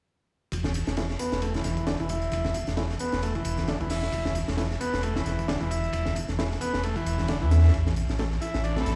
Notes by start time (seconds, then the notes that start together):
0.52 E1, kick, ride, tambourine
0.64 snare, tambourine, high conga
0.74 ride, tambourine, high conga
0.87 E1, snare, tambourine
0.97 E3, snare, ride, tambourine
1.09 snare, tambourine
1.19 B3, ride, tambourine
1.32 E1, snare, tambourine
1.42 A3, ride, tambourine
1.54 E3, snare, tambourine, high conga
1.64 E1, snare, ride, tambourine
1.77 kick, tambourine
1.87 D3, snare, ride, tambourine
1.99 E1 E3, kick, tambourine
2.09 E4, kick, ride, tambourine
2.22 tambourine
2.32 E1, kick, ride, tambourine
2.44 snare, tambourine, high conga
2.54 kick, ride, tambourine
2.67 E1, snare, tambourine
2.77 E3, snare, ride, tambourine
2.90 snare, tambourine
2.99 B3, ride, tambourine
3.12 E1, snare, tambourine
3.22 A3, ride, tambourine
3.35 E3, kick, tambourine
3.45 E1, ride, tambourine
3.57 snare, tambourine, high conga
3.68 D3, snare, ride, tambourine
3.80 E1 E3, kick, tambourine, high conga
3.90 E4, snare, open hi-hat, tambourine
4.02 snare, tambourine
4.13 E1, kick, ride, tambourine
4.25 snare, tambourine, high conga
4.35 ride, tambourine, high conga
4.48 E1, snare, tambourine
4.57 E3, snare, ride, tambourine
4.71 snare, tambourine
4.81 B3, ride, tambourine
4.93 E1, snare, tambourine
5.03 A3, ride, tambourine
5.15 E3, snare, tambourine, high conga
5.26 E1, snare, ride, tambourine
5.39 kick, tambourine
5.48 D3, snare, ride, tambourine
5.61 E1 E3, kick, tambourine
5.70 E4, kick, ride, tambourine
5.84 tambourine
5.93 E1, kick, ride, tambourine
6.06 snare, tambourine, high conga
6.16 kick, ride, tambourine, high conga
6.28 E1, snare, tambourine
6.39 E3, snare, ride, tambourine
6.51 snare, tambourine
6.61 B3, ride, tambourine
6.73 E1, snare, tambourine
6.83 A3, ride, tambourine
6.96 E3, kick, tambourine
7.06 E1, ride, tambourine
7.18 snare, tambourine, high conga
7.28 D3, snare, ride, tambourine
7.41 E2 E3, kick, tambourine, high conga
7.51 E4, snare, ride, tambourine
7.58 snare, ride
7.64 snare, ride, tambourine
7.68 snare, ride
7.74 A1, kick, ride, tambourine
7.86 snare, tambourine, high conga
7.96 ride, tambourine, high conga
8.09 A1, snare, tambourine
8.19 A3, snare, ride, tambourine
8.32 snare, tambourine
8.41 E4, ride, tambourine
8.54 A1, snare, tambourine
8.64 D4, ride, tambourine
8.76 A3 C4 E4 A4, snare, tambourine, high conga
8.86 A1, snare, ride, tambourine